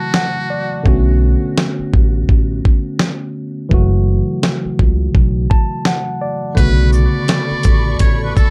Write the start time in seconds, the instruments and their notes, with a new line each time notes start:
Already playing: tine electric piano C#3 E3 F#3 A3 F#4 A5, muted trumpet F#4
0.14 tine electric piano F#5, snare
0.50 tine electric piano D5
0.83 upright bass B1, tine electric piano D3 A3 B3 C#4, kick
0.88 tine electric piano F#4
1.58 snare
1.79 muted upright bass stroke
1.94 upright bass A1, kick
2.29 upright bass A1, kick
2.65 kick
2.99 snare
3.69 upright bass F#1, tine electric piano C#3 E3 F#3 A3, kick
3.74 tine electric piano F#4
4.43 snare
4.65 muted upright bass stroke
4.79 upright bass C#2, kick
5.15 upright bass B1, kick
5.50 tine electric piano A5, kick
5.85 tine electric piano F#5, snare
6.22 tine electric piano D5
6.55 upright bass B1, tine electric piano C#3 D3 A3 B3, string section A4 D5 B5 C#6, muted trumpet B4, kick, closed hi-hat
6.60 tine electric piano F#4
6.92 muted trumpet D5, shaker
7.28 snare, closed hi-hat
7.51 muted upright bass stroke
7.63 upright bass A1, kick, closed hi-hat, shaker
7.99 upright bass A1, muted trumpet C#5, kick, closed hi-hat
8.24 muted trumpet B4
8.36 muted trumpet A4, kick, shaker